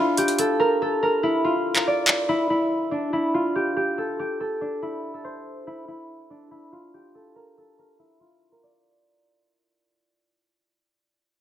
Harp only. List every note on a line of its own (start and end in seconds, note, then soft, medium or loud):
0.00 2.34 D4 medium
0.00 1.29 F4 medium
0.00 0.38 A4 medium
0.00 0.46 C5 medium
0.18 2.53 G4 medium
0.39 0.66 A4 medium
0.60 0.88 A#4 medium
0.82 1.09 A4 medium
1.03 1.75 A#4 medium
1.23 1.50 E4 medium
1.44 2.35 F4 medium
1.76 3.88 A#4 medium
1.87 3.72 D5 medium
2.29 2.50 E4 loud
2.50 3.12 E4 medium
2.91 4.61 D4 medium
3.13 3.40 E4 medium
3.34 4.88 F4 medium
3.55 3.76 G4 medium
3.77 4.19 G4 medium
3.98 4.40 A4 medium
4.19 6.55 G4 medium
4.40 5.14 A4 medium
4.61 6.30 D4 medium
4.82 5.67 E4 medium
5.14 7.14 A4 medium
5.24 7.22 C5 medium
5.67 5.88 E4 loud
5.88 6.51 E4 medium
6.30 9.10 D4 medium
6.51 6.78 E4 medium
6.72 8.05 F4 medium
6.94 9.29 G4 medium
7.15 7.42 A4 medium
7.36 7.64 A#4 medium
7.58 7.85 A4 medium
7.79 8.51 A#4 medium
7.99 8.26 E4 medium
8.20 10.73 F4 medium
8.52 10.64 A#4 medium
8.63 10.48 D5 medium